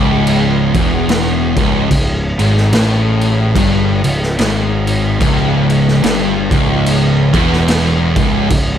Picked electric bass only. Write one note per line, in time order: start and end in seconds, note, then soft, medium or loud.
0.00 0.71 C#1 medium
0.74 1.53 E1 loud
1.56 1.89 C#1 medium
1.91 2.36 C#1 medium
2.39 2.71 G#1 loud
2.73 3.52 A1 loud
3.56 4.01 G1 loud
4.04 4.37 C#1 medium
4.39 5.17 G#1 medium
5.21 5.99 C#1 loud
6.04 6.48 G1 loud
6.51 7.30 C#1 loud
7.34 8.12 E1 loud
8.16 8.49 C#1 loud
8.51 8.78 C#1 medium